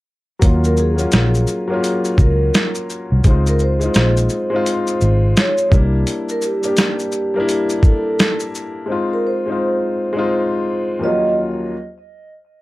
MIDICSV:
0, 0, Header, 1, 5, 480
1, 0, Start_track
1, 0, Tempo, 705882
1, 288, Time_signature, 4, 2, 24, 8
1, 8581, End_track
2, 0, Start_track
2, 0, Title_t, "Vibraphone"
2, 0, Program_c, 0, 11
2, 450, Note_on_c, 0, 70, 76
2, 526, Note_off_c, 0, 70, 0
2, 541, Note_on_c, 0, 68, 63
2, 1494, Note_off_c, 0, 68, 0
2, 1502, Note_on_c, 0, 70, 77
2, 1861, Note_off_c, 0, 70, 0
2, 2370, Note_on_c, 0, 70, 72
2, 2446, Note_off_c, 0, 70, 0
2, 2460, Note_on_c, 0, 72, 69
2, 3627, Note_off_c, 0, 72, 0
2, 3662, Note_on_c, 0, 73, 73
2, 3872, Note_off_c, 0, 73, 0
2, 4292, Note_on_c, 0, 70, 77
2, 4367, Note_off_c, 0, 70, 0
2, 4384, Note_on_c, 0, 67, 63
2, 5309, Note_off_c, 0, 67, 0
2, 5342, Note_on_c, 0, 69, 78
2, 5701, Note_off_c, 0, 69, 0
2, 6212, Note_on_c, 0, 70, 65
2, 6287, Note_off_c, 0, 70, 0
2, 6302, Note_on_c, 0, 72, 68
2, 7468, Note_off_c, 0, 72, 0
2, 7505, Note_on_c, 0, 75, 79
2, 7713, Note_off_c, 0, 75, 0
2, 8581, End_track
3, 0, Start_track
3, 0, Title_t, "Upright piano"
3, 0, Program_c, 1, 0
3, 267, Note_on_c, 1, 54, 72
3, 279, Note_on_c, 1, 58, 58
3, 293, Note_on_c, 1, 61, 56
3, 307, Note_on_c, 1, 65, 72
3, 400, Control_c, 1, 64, 127
3, 567, Note_off_c, 1, 54, 0
3, 573, Note_off_c, 1, 58, 0
3, 580, Note_off_c, 1, 61, 0
3, 587, Note_off_c, 1, 65, 0
3, 641, Note_on_c, 1, 54, 64
3, 655, Note_on_c, 1, 58, 62
3, 667, Note_on_c, 1, 61, 61
3, 681, Note_on_c, 1, 65, 67
3, 1006, Note_off_c, 1, 54, 0
3, 1013, Note_off_c, 1, 58, 0
3, 1019, Note_off_c, 1, 61, 0
3, 1026, Note_off_c, 1, 65, 0
3, 1139, Note_on_c, 1, 54, 85
3, 1154, Note_on_c, 1, 58, 79
3, 1166, Note_on_c, 1, 61, 76
3, 1179, Note_on_c, 1, 65, 88
3, 1888, Note_off_c, 1, 54, 0
3, 1895, Note_off_c, 1, 58, 0
3, 1901, Note_off_c, 1, 61, 0
3, 1908, Note_off_c, 1, 65, 0
3, 2206, Note_on_c, 1, 56, 71
3, 2216, Control_c, 1, 64, 0
3, 2219, Note_on_c, 1, 60, 63
3, 2232, Note_on_c, 1, 63, 67
3, 2245, Note_on_c, 1, 65, 71
3, 2325, Control_c, 1, 64, 127
3, 2496, Note_off_c, 1, 56, 0
3, 2503, Note_off_c, 1, 60, 0
3, 2509, Note_off_c, 1, 63, 0
3, 2516, Note_off_c, 1, 65, 0
3, 2581, Note_on_c, 1, 56, 71
3, 2595, Note_on_c, 1, 60, 52
3, 2608, Note_on_c, 1, 63, 59
3, 2622, Note_on_c, 1, 65, 69
3, 2936, Note_off_c, 1, 56, 0
3, 2943, Note_off_c, 1, 60, 0
3, 2950, Note_off_c, 1, 63, 0
3, 2957, Note_off_c, 1, 65, 0
3, 3060, Note_on_c, 1, 56, 82
3, 3073, Note_on_c, 1, 60, 73
3, 3086, Note_on_c, 1, 63, 70
3, 3099, Note_on_c, 1, 65, 95
3, 3808, Note_off_c, 1, 56, 0
3, 3815, Note_off_c, 1, 60, 0
3, 3821, Note_off_c, 1, 63, 0
3, 3828, Note_off_c, 1, 65, 0
3, 3867, Note_on_c, 1, 55, 69
3, 3879, Note_on_c, 1, 58, 68
3, 3893, Note_on_c, 1, 62, 64
3, 3898, Control_c, 1, 64, 0
3, 3905, Note_on_c, 1, 64, 80
3, 4020, Control_c, 1, 64, 127
3, 4358, Note_off_c, 1, 55, 0
3, 4364, Note_off_c, 1, 58, 0
3, 4371, Note_off_c, 1, 62, 0
3, 4377, Note_off_c, 1, 64, 0
3, 4496, Note_on_c, 1, 55, 57
3, 4511, Note_on_c, 1, 58, 58
3, 4523, Note_on_c, 1, 62, 65
3, 4537, Note_on_c, 1, 67, 76
3, 4854, Note_off_c, 1, 55, 0
3, 4861, Note_off_c, 1, 58, 0
3, 4867, Note_off_c, 1, 62, 0
3, 4874, Note_off_c, 1, 67, 0
3, 4991, Note_on_c, 1, 55, 84
3, 5004, Note_on_c, 1, 58, 84
3, 5017, Note_on_c, 1, 62, 71
3, 5031, Note_on_c, 1, 64, 100
3, 5734, Note_off_c, 1, 55, 0
3, 5740, Note_off_c, 1, 58, 0
3, 5747, Note_off_c, 1, 62, 0
3, 5753, Note_off_c, 1, 64, 0
3, 6024, Note_on_c, 1, 56, 65
3, 6037, Note_on_c, 1, 60, 60
3, 6050, Note_on_c, 1, 63, 56
3, 6056, Control_c, 1, 64, 0
3, 6063, Note_on_c, 1, 65, 82
3, 6163, Control_c, 1, 64, 127
3, 6325, Note_off_c, 1, 56, 0
3, 6332, Note_off_c, 1, 60, 0
3, 6338, Note_off_c, 1, 63, 0
3, 6345, Note_off_c, 1, 65, 0
3, 6431, Note_on_c, 1, 56, 65
3, 6445, Note_on_c, 1, 60, 67
3, 6456, Note_on_c, 1, 63, 64
3, 6471, Note_on_c, 1, 65, 73
3, 6781, Note_off_c, 1, 56, 0
3, 6788, Note_off_c, 1, 60, 0
3, 6794, Note_off_c, 1, 63, 0
3, 6801, Note_off_c, 1, 65, 0
3, 6887, Note_on_c, 1, 56, 88
3, 6901, Note_on_c, 1, 60, 67
3, 6914, Note_on_c, 1, 63, 84
3, 6926, Note_on_c, 1, 65, 96
3, 7472, Note_on_c, 1, 39, 63
3, 7473, Note_off_c, 1, 56, 0
3, 7480, Note_off_c, 1, 60, 0
3, 7483, Note_on_c, 1, 53, 49
3, 7487, Note_off_c, 1, 63, 0
3, 7492, Note_on_c, 1, 58, 57
3, 7493, Note_off_c, 1, 65, 0
3, 7496, Control_c, 1, 64, 0
3, 7503, Note_on_c, 1, 61, 62
3, 7513, Note_on_c, 1, 65, 71
3, 7526, Note_on_c, 1, 54, 62
3, 7540, Note_off_c, 1, 53, 0
3, 7629, Control_c, 1, 64, 127
3, 7887, Note_off_c, 1, 39, 0
3, 7897, Note_off_c, 1, 58, 0
3, 7903, Note_off_c, 1, 61, 0
3, 7908, Note_off_c, 1, 65, 0
3, 7914, Note_off_c, 1, 54, 0
3, 7978, Control_c, 1, 64, 0
3, 8581, End_track
4, 0, Start_track
4, 0, Title_t, "Fingered electric bass"
4, 0, Program_c, 2, 33
4, 289, Note_on_c, 2, 39, 93
4, 716, Note_off_c, 2, 39, 0
4, 772, Note_on_c, 2, 34, 85
4, 984, Note_off_c, 2, 34, 0
4, 1485, Note_on_c, 2, 37, 78
4, 1700, Note_off_c, 2, 37, 0
4, 2121, Note_on_c, 2, 36, 92
4, 2201, Note_off_c, 2, 36, 0
4, 2209, Note_on_c, 2, 37, 99
4, 2636, Note_off_c, 2, 37, 0
4, 2691, Note_on_c, 2, 34, 74
4, 2904, Note_off_c, 2, 34, 0
4, 3413, Note_on_c, 2, 32, 95
4, 3625, Note_off_c, 2, 32, 0
4, 3890, Note_on_c, 2, 36, 103
4, 4103, Note_off_c, 2, 36, 0
4, 8581, End_track
5, 0, Start_track
5, 0, Title_t, "Drums"
5, 286, Note_on_c, 9, 36, 91
5, 286, Note_on_c, 9, 42, 67
5, 286, Note_on_c, 9, 82, 61
5, 354, Note_off_c, 9, 36, 0
5, 354, Note_off_c, 9, 42, 0
5, 354, Note_off_c, 9, 82, 0
5, 437, Note_on_c, 9, 82, 48
5, 505, Note_off_c, 9, 82, 0
5, 523, Note_on_c, 9, 82, 40
5, 591, Note_off_c, 9, 82, 0
5, 670, Note_on_c, 9, 82, 39
5, 738, Note_off_c, 9, 82, 0
5, 760, Note_on_c, 9, 42, 62
5, 760, Note_on_c, 9, 82, 57
5, 771, Note_on_c, 9, 38, 98
5, 828, Note_off_c, 9, 42, 0
5, 828, Note_off_c, 9, 82, 0
5, 839, Note_off_c, 9, 38, 0
5, 915, Note_on_c, 9, 82, 47
5, 983, Note_off_c, 9, 82, 0
5, 1000, Note_on_c, 9, 82, 48
5, 1068, Note_off_c, 9, 82, 0
5, 1251, Note_on_c, 9, 42, 53
5, 1251, Note_on_c, 9, 82, 53
5, 1319, Note_off_c, 9, 42, 0
5, 1319, Note_off_c, 9, 82, 0
5, 1393, Note_on_c, 9, 82, 48
5, 1461, Note_off_c, 9, 82, 0
5, 1482, Note_on_c, 9, 36, 91
5, 1487, Note_on_c, 9, 82, 38
5, 1550, Note_off_c, 9, 36, 0
5, 1555, Note_off_c, 9, 82, 0
5, 1731, Note_on_c, 9, 42, 67
5, 1731, Note_on_c, 9, 82, 71
5, 1734, Note_on_c, 9, 38, 105
5, 1799, Note_off_c, 9, 42, 0
5, 1799, Note_off_c, 9, 82, 0
5, 1802, Note_off_c, 9, 38, 0
5, 1870, Note_on_c, 9, 82, 49
5, 1938, Note_off_c, 9, 82, 0
5, 1971, Note_on_c, 9, 82, 45
5, 2039, Note_off_c, 9, 82, 0
5, 2204, Note_on_c, 9, 42, 59
5, 2204, Note_on_c, 9, 82, 57
5, 2206, Note_on_c, 9, 36, 93
5, 2272, Note_off_c, 9, 42, 0
5, 2272, Note_off_c, 9, 82, 0
5, 2274, Note_off_c, 9, 36, 0
5, 2357, Note_on_c, 9, 82, 49
5, 2425, Note_off_c, 9, 82, 0
5, 2442, Note_on_c, 9, 82, 39
5, 2510, Note_off_c, 9, 82, 0
5, 2592, Note_on_c, 9, 82, 38
5, 2660, Note_off_c, 9, 82, 0
5, 2681, Note_on_c, 9, 42, 57
5, 2681, Note_on_c, 9, 82, 56
5, 2692, Note_on_c, 9, 38, 102
5, 2749, Note_off_c, 9, 42, 0
5, 2749, Note_off_c, 9, 82, 0
5, 2760, Note_off_c, 9, 38, 0
5, 2835, Note_on_c, 9, 82, 47
5, 2903, Note_off_c, 9, 82, 0
5, 2920, Note_on_c, 9, 82, 48
5, 2988, Note_off_c, 9, 82, 0
5, 3171, Note_on_c, 9, 42, 56
5, 3171, Note_on_c, 9, 82, 59
5, 3239, Note_off_c, 9, 42, 0
5, 3239, Note_off_c, 9, 82, 0
5, 3313, Note_on_c, 9, 82, 47
5, 3381, Note_off_c, 9, 82, 0
5, 3407, Note_on_c, 9, 82, 42
5, 3475, Note_off_c, 9, 82, 0
5, 3651, Note_on_c, 9, 42, 68
5, 3651, Note_on_c, 9, 82, 59
5, 3654, Note_on_c, 9, 38, 103
5, 3719, Note_off_c, 9, 42, 0
5, 3719, Note_off_c, 9, 82, 0
5, 3722, Note_off_c, 9, 38, 0
5, 3792, Note_on_c, 9, 82, 43
5, 3860, Note_off_c, 9, 82, 0
5, 3887, Note_on_c, 9, 36, 104
5, 3893, Note_on_c, 9, 82, 40
5, 3955, Note_off_c, 9, 36, 0
5, 3961, Note_off_c, 9, 82, 0
5, 4127, Note_on_c, 9, 42, 62
5, 4127, Note_on_c, 9, 82, 61
5, 4195, Note_off_c, 9, 42, 0
5, 4195, Note_off_c, 9, 82, 0
5, 4277, Note_on_c, 9, 82, 44
5, 4345, Note_off_c, 9, 82, 0
5, 4363, Note_on_c, 9, 82, 47
5, 4431, Note_off_c, 9, 82, 0
5, 4510, Note_on_c, 9, 82, 41
5, 4578, Note_off_c, 9, 82, 0
5, 4602, Note_on_c, 9, 42, 58
5, 4602, Note_on_c, 9, 82, 55
5, 4607, Note_on_c, 9, 54, 63
5, 4613, Note_on_c, 9, 38, 112
5, 4670, Note_off_c, 9, 42, 0
5, 4670, Note_off_c, 9, 82, 0
5, 4675, Note_off_c, 9, 54, 0
5, 4681, Note_off_c, 9, 38, 0
5, 4755, Note_on_c, 9, 82, 46
5, 4823, Note_off_c, 9, 82, 0
5, 4842, Note_on_c, 9, 82, 46
5, 4910, Note_off_c, 9, 82, 0
5, 5092, Note_on_c, 9, 42, 55
5, 5092, Note_on_c, 9, 82, 60
5, 5160, Note_off_c, 9, 42, 0
5, 5160, Note_off_c, 9, 82, 0
5, 5233, Note_on_c, 9, 82, 47
5, 5301, Note_off_c, 9, 82, 0
5, 5323, Note_on_c, 9, 36, 97
5, 5327, Note_on_c, 9, 82, 41
5, 5391, Note_off_c, 9, 36, 0
5, 5395, Note_off_c, 9, 82, 0
5, 5572, Note_on_c, 9, 42, 63
5, 5572, Note_on_c, 9, 82, 65
5, 5575, Note_on_c, 9, 54, 53
5, 5576, Note_on_c, 9, 38, 112
5, 5640, Note_off_c, 9, 42, 0
5, 5640, Note_off_c, 9, 82, 0
5, 5643, Note_off_c, 9, 54, 0
5, 5644, Note_off_c, 9, 38, 0
5, 5711, Note_on_c, 9, 82, 47
5, 5779, Note_off_c, 9, 82, 0
5, 5814, Note_on_c, 9, 82, 41
5, 5882, Note_off_c, 9, 82, 0
5, 8581, End_track
0, 0, End_of_file